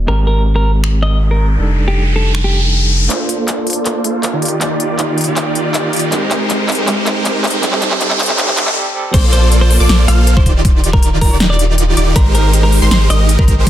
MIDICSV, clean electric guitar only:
0, 0, Header, 1, 2, 480
1, 0, Start_track
1, 0, Key_signature, -2, "major"
1, 0, Tempo, 377358
1, 104, Time_signature, 4, 2, 24, 8
1, 17425, End_track
2, 0, Start_track
2, 0, Title_t, "Clean electric guitar"
2, 0, Program_c, 0, 27
2, 104, Note_on_c, 0, 70, 93
2, 235, Note_off_c, 0, 70, 0
2, 344, Note_on_c, 0, 70, 89
2, 537, Note_off_c, 0, 70, 0
2, 707, Note_on_c, 0, 70, 90
2, 897, Note_off_c, 0, 70, 0
2, 1304, Note_on_c, 0, 75, 90
2, 1497, Note_off_c, 0, 75, 0
2, 1666, Note_on_c, 0, 70, 88
2, 1857, Note_off_c, 0, 70, 0
2, 2388, Note_on_c, 0, 67, 90
2, 2578, Note_off_c, 0, 67, 0
2, 2744, Note_on_c, 0, 69, 89
2, 2937, Note_off_c, 0, 69, 0
2, 3107, Note_on_c, 0, 67, 95
2, 3297, Note_off_c, 0, 67, 0
2, 11625, Note_on_c, 0, 72, 101
2, 11755, Note_off_c, 0, 72, 0
2, 11864, Note_on_c, 0, 72, 95
2, 12057, Note_off_c, 0, 72, 0
2, 12228, Note_on_c, 0, 72, 99
2, 12418, Note_off_c, 0, 72, 0
2, 12824, Note_on_c, 0, 77, 94
2, 13017, Note_off_c, 0, 77, 0
2, 13187, Note_on_c, 0, 72, 94
2, 13377, Note_off_c, 0, 72, 0
2, 13908, Note_on_c, 0, 70, 93
2, 14098, Note_off_c, 0, 70, 0
2, 14265, Note_on_c, 0, 70, 96
2, 14457, Note_off_c, 0, 70, 0
2, 14627, Note_on_c, 0, 74, 97
2, 14817, Note_off_c, 0, 74, 0
2, 15465, Note_on_c, 0, 70, 103
2, 15595, Note_off_c, 0, 70, 0
2, 15706, Note_on_c, 0, 70, 96
2, 15897, Note_off_c, 0, 70, 0
2, 16068, Note_on_c, 0, 70, 97
2, 16258, Note_off_c, 0, 70, 0
2, 16664, Note_on_c, 0, 75, 96
2, 16857, Note_off_c, 0, 75, 0
2, 17028, Note_on_c, 0, 70, 95
2, 17218, Note_off_c, 0, 70, 0
2, 17425, End_track
0, 0, End_of_file